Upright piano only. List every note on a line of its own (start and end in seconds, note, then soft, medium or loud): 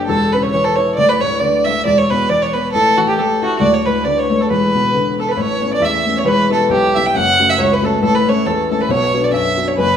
0.08 0.93 E1 medium
0.08 0.94 E2 medium
0.34 0.53 C#3 medium
0.54 0.78 E3 medium
0.78 0.97 E4 medium
0.98 1.82 D1 medium
0.98 1.83 D2 medium
1.21 1.41 A2 medium
1.41 1.66 D3 medium
1.66 1.85 A3 medium
1.85 2.70 E1 medium
1.85 2.71 E2 medium
2.11 2.30 B2 medium
2.30 2.54 E3 medium
2.54 2.73 B3 medium
2.74 3.58 A1 medium
2.74 3.60 A2 medium
2.97 3.17 E3 medium
3.18 3.42 A3 medium
3.42 3.61 E4 medium
3.60 4.45 D1 medium
3.60 4.46 D2 medium
3.87 4.06 A2 medium
4.05 4.30 D3 medium
4.30 4.49 A3 medium
4.50 5.34 E1 medium
4.50 5.36 E2 medium
4.75 4.94 B2 medium
4.93 5.18 D3 medium
5.19 5.37 B3 medium
5.37 6.21 A1 medium
5.37 5.80 A2 medium
5.61 5.97 A3 medium
5.61 5.97 B3 soft
5.61 5.97 C#4 medium
5.80 6.23 E2 medium
6.05 6.21 A3 medium
6.05 6.22 B3 soft
6.05 6.21 C#4 medium
6.24 7.09 E1 medium
6.24 6.68 E2 medium
6.50 6.86 G3 medium
6.50 6.86 B3 soft
6.50 6.86 E4 medium
6.69 7.12 B1 medium
6.95 7.10 G3 medium
6.95 7.11 B3 soft
6.95 7.11 E4 medium
7.15 7.98 F#1 medium
7.15 7.57 F#2 medium
7.39 7.74 A3 medium
7.39 7.74 C#4 soft
7.39 7.75 F#4 medium
7.58 8.00 C#2 medium
7.82 7.97 A3 medium
7.82 7.97 C#4 soft
7.82 7.98 F#4 medium
8.02 8.85 A1 medium
8.02 8.44 A2 medium
8.27 8.62 A3 medium
8.27 8.62 C#4 soft
8.27 8.62 E4 medium
8.46 8.88 E2 medium
8.71 8.86 A3 soft
8.71 8.86 C#4 soft
8.71 8.86 E4 medium
8.89 9.73 B1 medium
8.89 9.31 B2 medium
9.13 9.49 B3 medium
9.13 9.49 D4 soft
9.13 9.49 F#4 medium
9.31 9.75 F#2 medium
9.57 9.73 B3 medium
9.57 9.72 D4 soft
9.57 9.73 F#4 medium
9.78 9.97 F#1 medium
9.78 9.97 F#2 medium